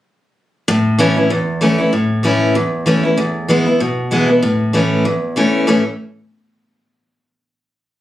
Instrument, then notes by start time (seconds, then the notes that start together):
steel-string acoustic guitar
0.68 A2
0.99 E3 A3 C#4 E4
1.16 C#4 E4
1.30 E2
1.61 E3 A3 C#4 E4
1.78 C#4 E4
1.93 A2
2.23 E3 A3 C#4 E4
2.55 E2
2.86 E3 A3 C#4 E4
3.03 C#4 E4
3.17 E2
3.48 E3 G#3 B3 E4
3.66 B3 E4
3.80 B2
4.11 E3 G#3 B3 E4
4.28 B3 E4
4.42 A2
4.73 E3 A3 C#4 E4
5.05 E2
5.36 E3 A3 C#4 E4
5.67 A2 E3 A3 C#4 E4